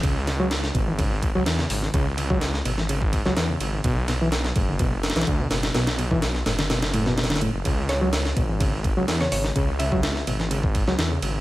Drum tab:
RD |x---x---x---x---x---x---x-------|x---x---x---x---x---x---x---x---|x---x---x---x---x---xxxxx---x-x-|x-x-x---x---x-x-x-x-x---xxxxx---|
HH |----------------------------o---|--------------------------------|--------------------------------|--------------------------------|
SD |----o---o-o-------------o-o---o-|--------o-o---o-------o-o-------|----o---o-o---------oooo----o-o-|o-o-----o-o-o-o-o-o---o-oooo----|
BD |o-----------o---o---o-----------|o-----o-----------o-o-----------|o-----------o---o-------o-------|------o-------------------------|

RD |x---x---x---x---x---x---x-------|x---x---x---x---x---x---x---x---|
HH |----------------------------o---|--------------------------------|
SD |----o---o-o-------------o-o---o-|--------o-o---o-------o-o-------|
BD |o-----------o---o---o-----------|o-----o-----------o-o-----------|